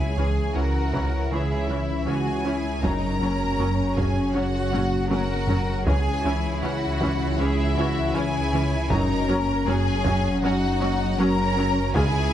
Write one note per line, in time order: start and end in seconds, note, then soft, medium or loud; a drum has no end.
0.00 0.46 C#2 medium
0.00 2.85 C#2 medium
0.00 2.82 C#3 medium
0.00 2.67 E3 medium
0.00 5.83 C#4 medium
0.00 5.84 C#4 medium
0.00 0.17 E4 medium
0.00 2.83 E4 medium
0.00 0.55 G#4 medium
0.00 5.83 C#5 medium
0.00 0.54 G#5 medium
0.18 0.40 C#2 medium
0.18 0.40 E3 medium
0.18 0.26 E3 soft
0.18 0.26 C#4 soft
0.18 0.55 G#4 medium
0.55 1.22 C#2 medium
0.55 0.79 C#2 medium
0.55 0.63 E3 soft
0.55 0.79 E3 medium
0.55 0.63 C#4 soft
0.55 1.31 F#4 medium
0.55 1.30 A#4 medium
0.55 1.31 F#5 medium
0.93 1.16 C#2 medium
0.93 1.16 C#3 medium
0.93 1.02 E3 soft
0.93 1.02 C#4 soft
0.93 taiko medium
1.31 1.98 C#2 medium
1.31 1.54 C#3 medium
1.31 1.40 E3 soft
1.31 1.54 G#3 medium
1.31 1.40 C#4 soft
1.31 2.06 E4 medium
1.31 1.69 G#4 medium
1.31 2.06 E5 medium
1.69 1.92 C#2 medium
1.69 1.92 E3 medium
1.69 1.78 E3 soft
1.69 1.78 C#4 soft
1.69 2.07 E4 soft
2.07 2.74 C#2 medium
2.07 2.30 C#2 medium
2.07 2.30 C#3 medium
2.07 2.15 E3 medium
2.07 2.15 C#4 soft
2.07 2.45 F#4 medium
2.07 2.82 G#4 medium
2.07 2.84 G#5 medium
2.45 2.68 C#3 medium
2.45 2.53 E3 soft
2.45 2.68 G#3 medium
2.45 2.53 C#4 soft
2.45 2.83 E4 soft
2.83 5.89 F#1 medium
2.83 3.50 F#2 medium
2.83 3.06 F#2 medium
2.83 8.87 C#3 medium
2.83 2.92 F#3 soft
2.83 5.83 F#3 medium
2.83 3.06 F#3 medium
2.83 2.91 C#4 soft
2.83 3.21 D#4 medium
2.83 5.87 F#4 medium
2.83 3.97 A#4 medium
2.83 3.97 A#5 medium
2.83 taiko medium
3.21 3.44 F#2 medium
3.21 3.30 F#3 soft
3.21 3.44 A#3 medium
3.21 4.33 C#4 medium
3.21 3.30 C#4 soft
3.59 4.26 F#2 medium
3.59 3.82 F#2 medium
3.59 3.68 F#3 medium
3.59 3.82 A#3 medium
3.59 3.67 C#4 medium
3.97 4.20 F#2 medium
3.97 4.20 F#3 medium
3.97 4.05 F#3 soft
3.97 4.05 C#4 soft
3.97 4.35 G#4 medium
3.97 4.35 G#5 medium
3.97 taiko medium
4.34 5.02 F#2 medium
4.34 4.43 F#3 medium
4.34 4.58 F#3 medium
4.34 4.43 C#4 medium
4.34 4.58 C#4 medium
4.34 5.09 F#4 medium
4.34 5.11 F#4 medium
4.34 5.09 F#5 medium
4.73 4.96 F#2 medium
4.73 4.81 F#3 soft
4.73 4.96 A#3 medium
4.73 4.81 C#4 medium
4.73 taiko low-mid medium
5.10 5.34 F#2 medium
5.10 5.78 F#2 medium
5.10 5.34 F#3 medium
5.10 5.19 F#3 medium
5.10 5.19 C#4 medium
5.10 5.85 F#4 medium
5.10 5.87 A#4 medium
5.10 5.85 F#5 medium
5.10 taiko high medium
5.49 5.72 F#3 medium
5.49 5.57 F#3 medium
5.49 5.72 C#4 medium
5.49 5.57 C#4 medium
5.49 taiko low medium
5.86 6.09 C#2 medium
5.86 8.92 C#2 medium
5.86 6.54 C#2 medium
5.86 6.09 C#3 medium
5.86 8.86 E3 medium
5.86 5.94 E3 medium
5.86 11.90 C#4 medium
5.86 5.95 C#4 medium
5.86 11.77 C#4 medium
5.86 8.91 E4 medium
5.86 6.61 G#4 medium
5.86 6.24 G#4 medium
5.86 11.90 C#5 medium
5.86 6.61 G#5 medium
5.86 taiko medium
6.24 6.48 C#2 medium
6.24 6.32 E3 medium
6.24 6.48 E3 medium
6.24 6.33 C#4 medium
6.24 7.39 E4 medium
6.62 7.30 C#2 medium
6.62 6.86 C#2 medium
6.62 6.70 E3 medium
6.62 6.86 E3 medium
6.62 6.70 C#4 medium
6.62 7.39 F#4 medium
6.62 7.37 F#5 medium
7.01 7.24 C#2 medium
7.01 7.24 C#3 medium
7.01 7.09 E3 medium
7.01 7.09 C#4 medium
7.01 taiko medium
7.38 8.06 C#2 medium
7.38 7.62 C#3 medium
7.38 7.47 E3 medium
7.38 7.62 G#3 medium
7.38 7.48 C#4 medium
7.38 8.15 E4 medium
7.38 7.76 G#4 medium
7.38 8.15 E5 medium
7.77 7.99 C#2 medium
7.77 7.85 E3 medium
7.77 8.00 E3 medium
7.77 7.85 C#4 medium
7.77 8.14 F#4 medium
8.15 8.82 C#2 medium
8.15 8.38 C#2 medium
8.15 8.38 C#3 medium
8.15 8.23 E3 medium
8.15 8.23 C#4 medium
8.15 8.91 E4 medium
8.15 8.91 G#4 medium
8.15 8.91 G#5 loud
8.53 8.76 C#3 medium
8.53 8.62 E3 medium
8.53 8.76 G#3 medium
8.53 8.62 C#4 medium
8.90 11.96 F#1 medium
8.90 9.58 F#2 medium
8.90 9.13 F#2 loud
8.90 12.33 C#3 medium
8.90 11.77 F#3 medium
8.90 9.14 F#3 loud
8.90 8.99 F#3 medium
8.90 8.99 C#4 medium
8.90 9.29 D#4 medium
8.90 11.95 F#4 medium
8.90 9.65 A#4 medium
8.90 9.67 A#5 loud
8.90 taiko medium
9.28 9.51 F#2 medium
9.28 9.37 F#3 medium
9.28 9.52 A#3 medium
9.28 9.66 C#4 medium
9.28 9.37 C#4 medium
9.66 10.33 F#2 medium
9.66 9.89 F#2 medium
9.66 9.75 F#3 medium
9.66 9.90 A#3 medium
9.66 10.41 C#4 medium
9.66 9.75 C#4 medium
9.66 10.43 G#4 loud
9.66 10.43 G#5 medium
10.04 10.28 F#2 medium
10.04 10.28 F#3 medium
10.04 10.13 F#3 medium
10.04 10.13 C#4 medium
10.04 taiko medium
10.42 11.09 F#2 medium
10.42 10.65 F#3 medium
10.42 10.52 F#3 medium
10.42 10.66 C#4 medium
10.42 10.52 C#4 medium
10.42 11.19 D#4 medium
10.42 11.17 F#4 medium
10.42 11.17 F#5 loud
10.80 11.04 F#2 medium
10.80 10.89 F#3 medium
10.80 11.03 A#3 medium
10.80 10.89 C#4 medium
11.18 11.85 F#2 medium
11.18 11.41 F#2 loud
11.18 11.41 F#3 medium
11.18 11.28 F#3 medium
11.18 11.93 C#4 medium
11.18 11.27 C#4 medium
11.18 11.93 A#4 loud
11.18 11.95 A#5 loud
11.56 11.79 F#3 medium
11.56 11.66 F#3 medium
11.56 11.79 C#4 medium
11.56 11.66 C#4 medium
11.94 12.17 C#2 medium
11.94 12.33 C#2 medium
11.94 12.18 C#3 medium
11.94 12.33 G#3 loud
11.94 12.03 G#3 medium
11.94 12.33 C#4 medium
11.94 12.03 C#4 medium
11.94 12.33 E4 medium
11.94 12.33 G#4 medium
11.94 12.33 G#4 loud
11.94 12.33 C#5 medium
11.94 12.33 G#5 loud
11.94 taiko loud